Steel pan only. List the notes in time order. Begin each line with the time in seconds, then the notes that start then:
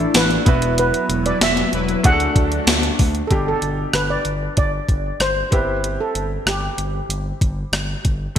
Already playing: D5
0.17 B4
0.79 B4
1.26 D5
1.43 E5
2.05 F#5
3.27 A4
3.32 G4
3.48 A4
3.95 B4
4.10 D5
4.58 D5
5.21 C5
5.53 B4
6.01 A4
6.48 G4